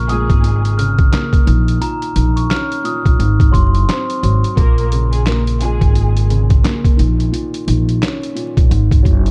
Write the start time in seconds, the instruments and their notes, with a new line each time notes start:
Already playing: upright bass A#1, grand piano A#2 C#3 A#3
0.08 grand piano A#2, string section G#3 G#4, glockenspiel D#6, closed hi-hat
0.30 upright bass G#1, kick, closed hi-hat
0.43 grand piano A#2, closed hi-hat
0.65 closed hi-hat
0.78 grand piano C#3, glockenspiel F6, closed hi-hat
0.98 kick, closed hi-hat
1.12 grand piano A#3, snare, clap, closed hi-hat
1.33 kick, closed hi-hat
1.45 upright bass A#1, grand piano D#3, closed hi-hat
1.68 closed hi-hat
1.80 grand piano A#2, glockenspiel A#5, closed hi-hat
2.02 closed hi-hat
2.15 upright bass A#1, grand piano D#3, closed hi-hat
2.36 glockenspiel C#6, closed hi-hat
2.50 grand piano C#4, glockenspiel F6, snare, clap, closed hi-hat
2.72 closed hi-hat
2.84 grand piano A#2, glockenspiel D#6, closed hi-hat
3.06 upright bass A#1, kick, closed hi-hat
3.19 upright bass G#1, grand piano G#2, closed hi-hat
3.40 kick, closed hi-hat
3.51 upright bass F#1, grand piano F#3, glockenspiel C6, kick, closed hi-hat
3.75 closed hi-hat
3.89 grand piano C4, snare, clap, closed hi-hat
4.10 closed hi-hat
4.23 upright bass G#1, grand piano F#3, closed hi-hat
4.44 closed hi-hat
4.56 upright bass A#1, grand piano A#2, string section A#3 A#4, kick, closed hi-hat
4.78 closed hi-hat
4.92 grand piano C#3, closed hi-hat
5.11 string section G#3 G#4, closed hi-hat
5.27 string section A#3 A#4, grand piano A#3, snare, clap, closed hi-hat
5.47 closed hi-hat
5.61 grand piano A#2, string section G#3 G#4, closed hi-hat
5.81 upright bass G#1, kick, closed hi-hat
5.94 grand piano A#2, closed hi-hat
6.17 closed hi-hat
6.30 grand piano C#3, closed hi-hat
6.50 kick, closed hi-hat
6.63 grand piano A#3, snare, clap, closed hi-hat
6.85 kick, closed hi-hat
6.97 upright bass A#1, grand piano D#3, closed hi-hat
7.20 closed hi-hat
7.32 grand piano A#2, closed hi-hat
7.54 closed hi-hat
7.67 upright bass A#1, grand piano D#3, closed hi-hat
7.89 closed hi-hat
8.02 grand piano C#4, snare, clap, closed hi-hat
8.23 closed hi-hat
8.35 grand piano A#2, closed hi-hat
8.57 upright bass A#1, kick, closed hi-hat
8.70 upright bass G#1, grand piano G#2, closed hi-hat
8.91 kick, closed hi-hat
9.03 upright bass F#1, grand piano F#3, kick, closed hi-hat
9.26 closed hi-hat